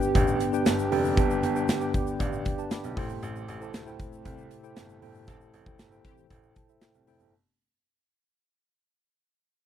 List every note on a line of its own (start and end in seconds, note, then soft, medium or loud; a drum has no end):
0.00 1.17 G2 medium
0.00 2.93 D3 medium
0.00 2.93 B3 medium
0.00 0.14 D4 medium
0.00 0.15 G4 medium
0.00 7.29 G4 medium
0.00 0.15 B4 medium
0.00 0.16 G5 medium
0.00 shaker medium
0.14 0.34 A1 loud
0.14 0.39 D4 medium
0.14 0.40 G4 medium
0.14 0.40 B4 medium
0.14 0.40 G5 medium
0.14 kick medium
0.14 closed hi-hat medium
0.14 shaker medium
0.28 shaker soft
0.40 closed hi-hat medium
0.40 shaker medium
0.53 0.78 D4 medium
0.53 0.78 G4 medium
0.53 0.78 B4 medium
0.53 0.78 G5 loud
0.53 shaker soft
0.66 0.85 G1 medium
0.66 snare loud
0.66 closed hi-hat medium
0.66 tambourine medium
0.66 shaker medium
0.79 shaker medium
0.91 1.17 F1 loud
0.91 1.08 D4 medium
0.91 1.08 G4 medium
0.91 1.08 B4 medium
0.91 1.09 G5 loud
0.91 open hi-hat medium
1.05 shaker soft
1.17 1.37 G1 loud
1.17 1.90 G2 medium
1.17 1.42 D4 medium
1.17 1.42 G4 medium
1.17 1.42 B4 medium
1.17 1.42 G5 loud
1.17 kick medium
1.17 closed hi-hat medium
1.17 shaker medium
1.30 shaker medium
1.43 1.62 G1 loud
1.43 closed hi-hat medium
1.43 shaker soft
1.55 1.72 D4 medium
1.55 1.72 G4 medium
1.55 1.72 B4 medium
1.55 1.73 G5 medium
1.55 shaker medium
1.69 1.88 G1 medium
1.69 snare loud
1.69 closed hi-hat loud
1.69 tambourine medium
1.69 shaker medium
1.81 2.06 D4 medium
1.81 2.06 G4 medium
1.81 2.06 B4 medium
1.81 2.06 G5 medium
1.81 shaker soft
1.94 2.18 D5 medium
1.94 kick loud
1.94 closed hi-hat medium
1.94 shaker soft
2.07 shaker medium
2.19 2.39 A1 loud
2.19 2.44 D4 medium
2.19 2.44 G4 medium
2.19 2.45 B4 medium
2.19 2.45 D5 medium
2.19 2.44 F5 medium
2.19 kick medium
2.19 closed hi-hat medium
2.19 shaker medium
2.33 shaker soft
2.45 2.69 G5 medium
2.45 kick medium
2.45 closed hi-hat medium
2.45 shaker medium
2.58 2.83 D4 medium
2.58 2.83 G4 medium
2.58 2.83 B4 medium
2.58 2.83 A5 medium
2.58 shaker soft
2.71 2.95 B5 medium
2.71 snare loud
2.71 closed hi-hat medium
2.71 tambourine medium
2.71 shaker medium
2.84 2.94 B1 medium
2.84 closed hi-hat medium
2.84 shaker medium
2.96 3.07 A1 loud
2.96 3.70 A2 medium
2.96 7.29 C3 medium
2.96 7.29 A3 medium
2.96 3.48 E4 loud
2.96 3.48 A4 medium
2.96 3.48 C5 medium
2.96 3.48 G5 loud
2.96 3.21 C6 medium
2.96 kick loud
2.96 open hi-hat medium
3.10 3.19 G1 medium
3.10 shaker soft
3.23 3.42 A1 loud
3.23 closed hi-hat medium
3.23 shaker medium
3.36 shaker medium
3.48 3.68 A1 loud
3.48 closed hi-hat medium
3.48 shaker soft
3.61 3.77 E4 medium
3.61 3.77 A4 medium
3.61 3.78 C5 medium
3.61 3.78 A5 medium
3.61 shaker medium
3.74 3.93 D2 medium
3.74 snare loud
3.74 closed hi-hat loud
3.74 tambourine medium
3.74 shaker medium
3.86 4.11 E4 medium
3.86 4.11 A4 medium
3.86 4.11 C5 medium
3.86 4.12 G5 medium
3.86 shaker medium
4.00 kick medium
4.00 closed hi-hat medium
4.00 shaker soft
4.13 shaker medium
4.25 4.45 C2 loud
4.25 4.50 E4 medium
4.25 4.50 A4 medium
4.25 4.50 C5 medium
4.25 4.50 G5 medium
4.25 kick medium
4.25 closed hi-hat medium
4.25 shaker medium
4.38 shaker soft
4.51 closed hi-hat medium
4.51 shaker medium
4.63 4.88 E4 medium
4.63 4.88 A4 medium
4.63 4.88 C5 medium
4.63 4.89 G5 medium
4.63 shaker soft
4.76 4.96 G1 medium
4.76 snare loud
4.76 closed hi-hat medium
4.76 tambourine medium
4.76 shaker medium
4.89 shaker medium
5.02 5.21 G1 medium
5.02 5.75 A2 medium
5.02 5.18 E4 medium
5.02 5.19 A4 medium
5.02 5.19 C5 medium
5.02 5.19 G5 medium
5.02 open hi-hat medium
5.15 shaker soft
5.27 5.47 A1 loud
5.27 5.39 E3 medium
5.27 5.39 C4 medium
5.27 5.52 E4 medium
5.27 5.39 G4 loud
5.27 5.52 A4 medium
5.27 5.52 C5 medium
5.27 5.53 A5 medium
5.27 kick loud
5.27 closed hi-hat medium
5.27 shaker medium
5.41 shaker soft
5.54 5.73 A1 loud
5.54 closed hi-hat medium
5.54 shaker soft
5.66 5.82 E4 medium
5.66 5.83 A4 medium
5.66 5.83 C5 medium
5.66 5.83 G5 medium
5.66 kick medium
5.66 shaker medium
5.79 5.98 G1 medium
5.79 snare loud
5.79 closed hi-hat loud
5.79 tambourine medium
5.79 shaker medium
5.91 6.16 E4 medium
5.91 6.16 A4 medium
5.91 6.17 C5 medium
5.91 6.17 G5 medium
5.91 shaker soft
6.05 6.27 E3 loud
6.05 6.27 C4 medium
6.05 6.26 G4 loud
6.05 kick medium
6.05 closed hi-hat medium
6.05 shaker soft
6.18 shaker medium
6.30 6.50 A1 loud
6.30 6.55 E4 medium
6.30 6.55 A4 medium
6.30 6.55 C5 medium
6.30 6.55 G5 medium
6.30 kick medium
6.30 closed hi-hat medium
6.30 shaker medium
6.43 shaker soft
6.56 6.80 A5 medium
6.56 kick medium
6.56 closed hi-hat medium
6.56 shaker medium
6.69 6.93 E4 medium
6.69 6.94 A4 medium
6.69 6.94 C5 medium
6.69 6.94 E5 medium
6.69 shaker soft
6.81 7.06 G5 medium
6.81 snare loud
6.81 closed hi-hat medium
6.81 tambourine medium
6.81 shaker medium
6.94 7.04 C2 medium
6.94 shaker medium
7.07 7.17 F1 medium
7.07 7.24 E4 medium
7.07 7.24 A4 medium
7.07 7.24 C5 medium
7.07 7.31 E5 medium
7.07 7.24 G5 medium
7.07 open hi-hat medium
7.07 shaker soft
7.20 7.30 G1 medium
7.20 shaker soft